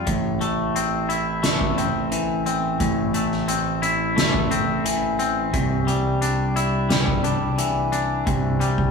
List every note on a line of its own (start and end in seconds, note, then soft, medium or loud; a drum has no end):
0.00 0.75 C4 soft
0.00 1.86 A4 medium
0.06 2.76 A1 medium
0.06 1.77 A2 soft
0.06 kick medium
0.06 closed hi-hat medium
0.41 1.42 A3 soft
0.41 closed hi-hat soft
0.76 1.77 C4 soft
0.76 closed hi-hat medium
1.09 3.82 E4 medium
1.09 closed hi-hat soft
1.43 3.13 A3 medium
1.43 snare medium
1.43 closed hi-hat medium
1.61 kick medium
1.78 2.46 C4 soft
1.78 closed hi-hat soft
2.12 4.84 E3 soft
2.12 closed hi-hat medium
2.46 3.48 C4 soft
2.46 closed hi-hat soft
2.80 5.50 A1 medium
2.80 4.51 A2 medium
2.80 kick medium
2.80 closed hi-hat medium
3.14 4.15 A3 soft
3.14 closed hi-hat soft
3.32 snare soft
3.48 4.50 C4 medium
3.48 closed hi-hat medium
3.82 6.25 E4 medium
3.82 closed hi-hat soft
4.16 5.53 A3 soft
4.16 snare medium
4.16 closed hi-hat medium
4.34 kick medium
4.51 5.19 C4 medium
4.51 closed hi-hat soft
4.85 6.25 E3 soft
4.85 closed hi-hat medium
5.19 6.21 C4 medium
5.19 closed hi-hat soft
5.53 8.23 C2 medium
5.53 7.27 C3 medium
5.53 kick medium
5.53 closed hi-hat medium
5.87 6.88 G3 medium
5.87 closed hi-hat soft
6.22 7.23 D4 medium
6.22 closed hi-hat medium
6.56 8.91 E4 medium
6.56 closed hi-hat soft
6.89 8.59 G3 medium
6.89 snare medium
6.89 closed hi-hat medium
7.07 kick medium
7.24 7.91 D4 medium
7.24 closed hi-hat soft
7.58 8.91 E3 soft
7.58 closed hi-hat medium
7.92 8.91 D4 soft
7.92 closed hi-hat soft
8.26 8.91 C2 medium
8.26 8.91 C3 medium
8.26 kick medium
8.26 closed hi-hat medium
8.60 8.91 G3 medium
8.60 closed hi-hat soft
8.78 kick medium